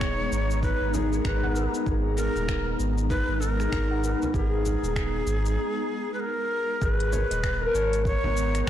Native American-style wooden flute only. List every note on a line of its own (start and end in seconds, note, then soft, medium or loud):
0.00 0.63 C#5 loud
0.63 0.96 B4 loud
0.94 1.25 G#4 medium
1.26 1.71 B4 medium
2.17 2.75 A#4 loud
3.10 3.42 B4 loud
3.40 4.35 A#4 loud
4.34 4.48 G4 medium
4.48 6.13 G#4 medium
6.14 6.21 B4 medium
6.20 6.83 A#4 loud
6.82 7.76 B4 loud
7.75 8.05 C#5 loud
8.06 8.68 C#5 loud